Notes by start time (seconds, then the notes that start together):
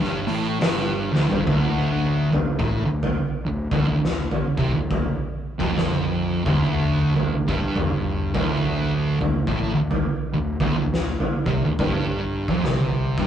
0.01 G1 G2, snare
0.27 A1 A2, open hi-hat
0.60 G1 G2, snare, open hi-hat
1.13 D1 D2, snare
1.29 G1 G2, floor tom
1.46 D1 D2, kick, floor tom
2.32 D1 D2, floor tom
2.59 A1 A2, kick
2.85 D1 D2
3.03 floor tom
3.46 D1 D2
3.71 D1 D2, kick, floor tom
3.88 D1 D2
4.05 snare
4.31 floor tom
4.57 C2 C3, kick
4.74 D1 D2
4.91 kick, floor tom
5.59 F1 F2, kick
5.77 snare, floor tom
6.45 D1 D2, kick, floor tom, mid tom
7.15 D1 D2, floor tom
7.48 G1 G2, kick
7.76 floor tom, mid tom
8.34 D1 D2, kick, floor tom
9.20 D1 D2, floor tom
9.47 A1 A2, kick
9.74 D1 D2
9.91 floor tom
10.33 D1 D2
10.60 D1 D2, kick, floor tom
10.77 D1 D2
10.94 snare
11.20 floor tom
11.46 C2 C3, kick
11.63 D1 D2
11.79 G1 G2, kick, floor tom
12.48 F1 F2, kick
12.64 C2 C3, snare, floor tom
13.18 G1 G2, kick